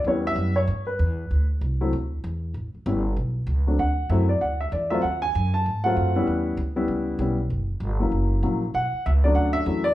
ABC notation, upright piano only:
X:1
M:4/4
L:1/8
Q:"Swing" 1/4=193
K:Amix
V:1 name="Upright piano"
c e2 c2 B3- | B z6 z | z8 | f2 e d f e d e |
f ^g2 a2 f3- | f z6 z | z8 | f2 e d f e2 d |]
V:2 name="Upright piano"
[G,B,CE]3 z4 z | z3 [F,A,=CE] z4 | z2 [G,B,CE] z4 [F,A,=CD] | z2 [F,A,=CE] z4 [F,A,C=F] |
z4 z [F,A,^B,=F]2 [G,=B,CE]- | [G,B,CE]2 z [G,B,CE]3 [G,B,CE] z | z3 [F,^A,CE]3 [F,A,CE] z | z3 [F,A,CD]3 [F,A,CE] z |]